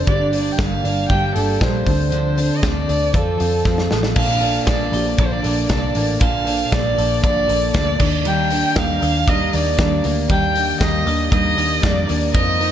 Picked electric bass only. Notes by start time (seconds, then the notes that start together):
0.07 G1
0.59 G1
0.84 G1
1.10 G1
1.36 G1
1.61 A#1
1.86 D2
2.63 D2
2.89 D2
3.14 F2
3.41 F2
3.65 F2
3.92 A1
4.16 A#1
4.67 A#1
4.92 A#1
5.19 A#1
5.45 A#1
5.69 C2
5.95 A1
6.21 A#1
6.72 A#1
6.98 A#1
7.24 A#1
7.49 A#1
7.75 D2
8.00 D#2
8.76 D#2
9.02 D#2
9.28 D#2
9.54 D#2
9.79 D#2
10.05 D2
10.30 D#2
10.81 D#2
11.06 D#2
11.32 D#2
11.57 D#2
11.83 F2
12.10 D#2
12.35 F2